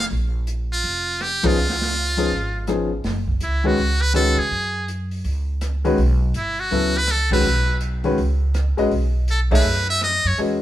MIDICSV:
0, 0, Header, 1, 5, 480
1, 0, Start_track
1, 0, Tempo, 366972
1, 136, Time_signature, 4, 2, 24, 8
1, 13890, End_track
2, 0, Start_track
2, 0, Title_t, "Muted trumpet"
2, 0, Program_c, 0, 59
2, 947, Note_on_c, 0, 65, 86
2, 1590, Note_on_c, 0, 67, 86
2, 1610, Note_off_c, 0, 65, 0
2, 1913, Note_on_c, 0, 65, 96
2, 1933, Note_off_c, 0, 67, 0
2, 3515, Note_off_c, 0, 65, 0
2, 4492, Note_on_c, 0, 64, 74
2, 4795, Note_on_c, 0, 66, 90
2, 4815, Note_off_c, 0, 64, 0
2, 5250, Note_on_c, 0, 71, 104
2, 5270, Note_off_c, 0, 66, 0
2, 5423, Note_off_c, 0, 71, 0
2, 5436, Note_on_c, 0, 69, 96
2, 5733, Note_on_c, 0, 68, 88
2, 5753, Note_off_c, 0, 69, 0
2, 6384, Note_off_c, 0, 68, 0
2, 8336, Note_on_c, 0, 64, 79
2, 8631, Note_on_c, 0, 66, 93
2, 8650, Note_off_c, 0, 64, 0
2, 9119, Note_on_c, 0, 71, 107
2, 9139, Note_off_c, 0, 66, 0
2, 9300, Note_on_c, 0, 69, 89
2, 9320, Note_off_c, 0, 71, 0
2, 9577, Note_off_c, 0, 69, 0
2, 9585, Note_on_c, 0, 71, 89
2, 10185, Note_off_c, 0, 71, 0
2, 12173, Note_on_c, 0, 69, 73
2, 12302, Note_off_c, 0, 69, 0
2, 12485, Note_on_c, 0, 71, 82
2, 12911, Note_off_c, 0, 71, 0
2, 12949, Note_on_c, 0, 76, 101
2, 13099, Note_off_c, 0, 76, 0
2, 13124, Note_on_c, 0, 75, 93
2, 13434, Note_on_c, 0, 73, 82
2, 13454, Note_off_c, 0, 75, 0
2, 13593, Note_off_c, 0, 73, 0
2, 13890, End_track
3, 0, Start_track
3, 0, Title_t, "Grand piano"
3, 0, Program_c, 1, 0
3, 1872, Note_on_c, 1, 53, 73
3, 1878, Note_on_c, 1, 59, 63
3, 1879, Note_on_c, 1, 61, 64
3, 1882, Note_on_c, 1, 63, 67
3, 1888, Note_on_c, 1, 68, 78
3, 2035, Note_off_c, 1, 53, 0
3, 2039, Note_off_c, 1, 59, 0
3, 2039, Note_off_c, 1, 61, 0
3, 2041, Note_off_c, 1, 63, 0
3, 2044, Note_off_c, 1, 68, 0
3, 2839, Note_on_c, 1, 53, 55
3, 2848, Note_on_c, 1, 59, 48
3, 2849, Note_on_c, 1, 61, 53
3, 2851, Note_on_c, 1, 63, 55
3, 2857, Note_on_c, 1, 68, 67
3, 2999, Note_off_c, 1, 53, 0
3, 3004, Note_off_c, 1, 59, 0
3, 3004, Note_off_c, 1, 61, 0
3, 3005, Note_off_c, 1, 63, 0
3, 3008, Note_off_c, 1, 68, 0
3, 3501, Note_on_c, 1, 53, 61
3, 3501, Note_on_c, 1, 59, 51
3, 3510, Note_on_c, 1, 61, 53
3, 3511, Note_on_c, 1, 63, 50
3, 3515, Note_on_c, 1, 68, 65
3, 3774, Note_off_c, 1, 53, 0
3, 3774, Note_off_c, 1, 59, 0
3, 3778, Note_off_c, 1, 61, 0
3, 3779, Note_off_c, 1, 63, 0
3, 3781, Note_off_c, 1, 68, 0
3, 4759, Note_on_c, 1, 51, 67
3, 4768, Note_on_c, 1, 56, 68
3, 4773, Note_on_c, 1, 61, 64
3, 4773, Note_on_c, 1, 66, 65
3, 4780, Note_on_c, 1, 71, 67
3, 4920, Note_off_c, 1, 51, 0
3, 4924, Note_off_c, 1, 56, 0
3, 4927, Note_off_c, 1, 61, 0
3, 4927, Note_off_c, 1, 66, 0
3, 4930, Note_off_c, 1, 71, 0
3, 5410, Note_on_c, 1, 51, 66
3, 5417, Note_on_c, 1, 61, 64
3, 5419, Note_on_c, 1, 56, 57
3, 5420, Note_on_c, 1, 66, 65
3, 5421, Note_on_c, 1, 71, 69
3, 5688, Note_off_c, 1, 51, 0
3, 5692, Note_off_c, 1, 61, 0
3, 5693, Note_off_c, 1, 56, 0
3, 5694, Note_off_c, 1, 66, 0
3, 5694, Note_off_c, 1, 71, 0
3, 7645, Note_on_c, 1, 56, 76
3, 7647, Note_on_c, 1, 51, 72
3, 7652, Note_on_c, 1, 61, 71
3, 7655, Note_on_c, 1, 66, 72
3, 7659, Note_on_c, 1, 71, 82
3, 7803, Note_off_c, 1, 56, 0
3, 7804, Note_off_c, 1, 51, 0
3, 7806, Note_off_c, 1, 61, 0
3, 7808, Note_off_c, 1, 66, 0
3, 7810, Note_off_c, 1, 71, 0
3, 8777, Note_on_c, 1, 49, 59
3, 8780, Note_on_c, 1, 54, 60
3, 8785, Note_on_c, 1, 59, 65
3, 8787, Note_on_c, 1, 64, 58
3, 8791, Note_on_c, 1, 69, 77
3, 9052, Note_off_c, 1, 49, 0
3, 9054, Note_off_c, 1, 54, 0
3, 9056, Note_off_c, 1, 59, 0
3, 9057, Note_off_c, 1, 64, 0
3, 9059, Note_off_c, 1, 69, 0
3, 9565, Note_on_c, 1, 51, 64
3, 9573, Note_on_c, 1, 56, 62
3, 9573, Note_on_c, 1, 61, 57
3, 9573, Note_on_c, 1, 66, 67
3, 9580, Note_on_c, 1, 71, 76
3, 9723, Note_off_c, 1, 51, 0
3, 9727, Note_off_c, 1, 56, 0
3, 9727, Note_off_c, 1, 61, 0
3, 9727, Note_off_c, 1, 66, 0
3, 9730, Note_off_c, 1, 71, 0
3, 10517, Note_on_c, 1, 51, 75
3, 10521, Note_on_c, 1, 56, 62
3, 10527, Note_on_c, 1, 61, 71
3, 10531, Note_on_c, 1, 66, 68
3, 10534, Note_on_c, 1, 71, 81
3, 10679, Note_off_c, 1, 51, 0
3, 10680, Note_off_c, 1, 56, 0
3, 10684, Note_off_c, 1, 61, 0
3, 10686, Note_off_c, 1, 66, 0
3, 10687, Note_off_c, 1, 71, 0
3, 11475, Note_on_c, 1, 56, 78
3, 11479, Note_on_c, 1, 61, 68
3, 11488, Note_on_c, 1, 66, 71
3, 11490, Note_on_c, 1, 71, 62
3, 11494, Note_on_c, 1, 75, 82
3, 11637, Note_off_c, 1, 56, 0
3, 11639, Note_off_c, 1, 61, 0
3, 11644, Note_off_c, 1, 66, 0
3, 11644, Note_off_c, 1, 71, 0
3, 11647, Note_off_c, 1, 75, 0
3, 12439, Note_on_c, 1, 57, 77
3, 12444, Note_on_c, 1, 63, 68
3, 12449, Note_on_c, 1, 68, 63
3, 12451, Note_on_c, 1, 73, 74
3, 12459, Note_on_c, 1, 76, 80
3, 12599, Note_off_c, 1, 57, 0
3, 12601, Note_off_c, 1, 63, 0
3, 12603, Note_off_c, 1, 68, 0
3, 12605, Note_off_c, 1, 73, 0
3, 12608, Note_off_c, 1, 76, 0
3, 13580, Note_on_c, 1, 56, 60
3, 13583, Note_on_c, 1, 61, 55
3, 13587, Note_on_c, 1, 66, 54
3, 13589, Note_on_c, 1, 71, 47
3, 13592, Note_on_c, 1, 75, 60
3, 13851, Note_off_c, 1, 56, 0
3, 13853, Note_off_c, 1, 61, 0
3, 13855, Note_off_c, 1, 66, 0
3, 13856, Note_off_c, 1, 71, 0
3, 13857, Note_off_c, 1, 75, 0
3, 13890, End_track
4, 0, Start_track
4, 0, Title_t, "Upright bass"
4, 0, Program_c, 2, 32
4, 144, Note_on_c, 2, 34, 87
4, 1053, Note_off_c, 2, 34, 0
4, 1097, Note_on_c, 2, 29, 84
4, 2010, Note_off_c, 2, 29, 0
4, 2063, Note_on_c, 2, 37, 81
4, 2974, Note_off_c, 2, 37, 0
4, 3022, Note_on_c, 2, 32, 81
4, 3933, Note_off_c, 2, 32, 0
4, 3982, Note_on_c, 2, 30, 80
4, 4427, Note_off_c, 2, 30, 0
4, 4466, Note_on_c, 2, 37, 71
4, 4909, Note_off_c, 2, 37, 0
4, 4939, Note_on_c, 2, 37, 86
4, 5671, Note_off_c, 2, 37, 0
4, 5723, Note_on_c, 2, 49, 66
4, 5887, Note_off_c, 2, 49, 0
4, 5905, Note_on_c, 2, 42, 87
4, 6814, Note_off_c, 2, 42, 0
4, 6860, Note_on_c, 2, 37, 91
4, 7772, Note_off_c, 2, 37, 0
4, 7820, Note_on_c, 2, 35, 91
4, 8266, Note_off_c, 2, 35, 0
4, 8301, Note_on_c, 2, 31, 76
4, 8747, Note_off_c, 2, 31, 0
4, 8781, Note_on_c, 2, 37, 88
4, 9693, Note_off_c, 2, 37, 0
4, 9746, Note_on_c, 2, 35, 97
4, 10655, Note_off_c, 2, 35, 0
4, 10700, Note_on_c, 2, 37, 89
4, 11431, Note_off_c, 2, 37, 0
4, 11489, Note_on_c, 2, 34, 67
4, 11650, Note_off_c, 2, 34, 0
4, 11660, Note_on_c, 2, 35, 87
4, 12571, Note_off_c, 2, 35, 0
4, 12613, Note_on_c, 2, 42, 83
4, 13346, Note_off_c, 2, 42, 0
4, 13403, Note_on_c, 2, 42, 69
4, 13565, Note_off_c, 2, 42, 0
4, 13577, Note_on_c, 2, 40, 88
4, 13890, Note_off_c, 2, 40, 0
4, 13890, End_track
5, 0, Start_track
5, 0, Title_t, "Drums"
5, 133, Note_on_c, 9, 46, 37
5, 264, Note_off_c, 9, 46, 0
5, 616, Note_on_c, 9, 42, 49
5, 746, Note_off_c, 9, 42, 0
5, 1100, Note_on_c, 9, 46, 39
5, 1231, Note_off_c, 9, 46, 0
5, 1576, Note_on_c, 9, 42, 44
5, 1582, Note_on_c, 9, 37, 56
5, 1707, Note_off_c, 9, 42, 0
5, 1712, Note_off_c, 9, 37, 0
5, 1878, Note_on_c, 9, 51, 70
5, 1884, Note_on_c, 9, 36, 77
5, 2008, Note_off_c, 9, 51, 0
5, 2014, Note_off_c, 9, 36, 0
5, 2217, Note_on_c, 9, 38, 30
5, 2348, Note_off_c, 9, 38, 0
5, 2373, Note_on_c, 9, 38, 39
5, 2504, Note_off_c, 9, 38, 0
5, 2527, Note_on_c, 9, 42, 45
5, 2658, Note_off_c, 9, 42, 0
5, 2837, Note_on_c, 9, 46, 33
5, 2968, Note_off_c, 9, 46, 0
5, 3013, Note_on_c, 9, 46, 37
5, 3143, Note_off_c, 9, 46, 0
5, 3496, Note_on_c, 9, 42, 54
5, 3501, Note_on_c, 9, 37, 61
5, 3627, Note_off_c, 9, 42, 0
5, 3632, Note_off_c, 9, 37, 0
5, 3977, Note_on_c, 9, 46, 43
5, 3983, Note_on_c, 9, 38, 37
5, 4108, Note_off_c, 9, 46, 0
5, 4113, Note_off_c, 9, 38, 0
5, 4286, Note_on_c, 9, 36, 53
5, 4416, Note_off_c, 9, 36, 0
5, 4454, Note_on_c, 9, 42, 57
5, 4585, Note_off_c, 9, 42, 0
5, 4942, Note_on_c, 9, 46, 47
5, 5073, Note_off_c, 9, 46, 0
5, 5420, Note_on_c, 9, 42, 53
5, 5425, Note_on_c, 9, 37, 62
5, 5551, Note_off_c, 9, 42, 0
5, 5556, Note_off_c, 9, 37, 0
5, 5902, Note_on_c, 9, 46, 41
5, 6033, Note_off_c, 9, 46, 0
5, 6387, Note_on_c, 9, 42, 52
5, 6518, Note_off_c, 9, 42, 0
5, 6688, Note_on_c, 9, 46, 38
5, 6819, Note_off_c, 9, 46, 0
5, 6861, Note_on_c, 9, 46, 46
5, 6991, Note_off_c, 9, 46, 0
5, 7340, Note_on_c, 9, 42, 60
5, 7345, Note_on_c, 9, 37, 59
5, 7471, Note_off_c, 9, 42, 0
5, 7476, Note_off_c, 9, 37, 0
5, 7651, Note_on_c, 9, 46, 41
5, 7782, Note_off_c, 9, 46, 0
5, 7821, Note_on_c, 9, 46, 45
5, 7952, Note_off_c, 9, 46, 0
5, 8297, Note_on_c, 9, 42, 54
5, 8427, Note_off_c, 9, 42, 0
5, 8601, Note_on_c, 9, 46, 35
5, 8732, Note_off_c, 9, 46, 0
5, 8773, Note_on_c, 9, 46, 42
5, 8904, Note_off_c, 9, 46, 0
5, 9251, Note_on_c, 9, 42, 54
5, 9256, Note_on_c, 9, 37, 61
5, 9382, Note_off_c, 9, 42, 0
5, 9387, Note_off_c, 9, 37, 0
5, 9561, Note_on_c, 9, 36, 89
5, 9561, Note_on_c, 9, 49, 73
5, 9691, Note_off_c, 9, 49, 0
5, 9692, Note_off_c, 9, 36, 0
5, 10211, Note_on_c, 9, 42, 53
5, 10341, Note_off_c, 9, 42, 0
5, 10515, Note_on_c, 9, 46, 37
5, 10646, Note_off_c, 9, 46, 0
5, 10699, Note_on_c, 9, 46, 41
5, 10830, Note_off_c, 9, 46, 0
5, 11175, Note_on_c, 9, 42, 55
5, 11181, Note_on_c, 9, 37, 67
5, 11306, Note_off_c, 9, 42, 0
5, 11311, Note_off_c, 9, 37, 0
5, 11484, Note_on_c, 9, 46, 35
5, 11615, Note_off_c, 9, 46, 0
5, 11660, Note_on_c, 9, 46, 45
5, 11790, Note_off_c, 9, 46, 0
5, 12136, Note_on_c, 9, 42, 54
5, 12267, Note_off_c, 9, 42, 0
5, 12441, Note_on_c, 9, 49, 73
5, 12442, Note_on_c, 9, 36, 77
5, 12572, Note_off_c, 9, 36, 0
5, 12572, Note_off_c, 9, 49, 0
5, 13094, Note_on_c, 9, 42, 53
5, 13099, Note_on_c, 9, 37, 62
5, 13225, Note_off_c, 9, 42, 0
5, 13230, Note_off_c, 9, 37, 0
5, 13399, Note_on_c, 9, 46, 38
5, 13529, Note_off_c, 9, 46, 0
5, 13572, Note_on_c, 9, 46, 48
5, 13703, Note_off_c, 9, 46, 0
5, 13890, End_track
0, 0, End_of_file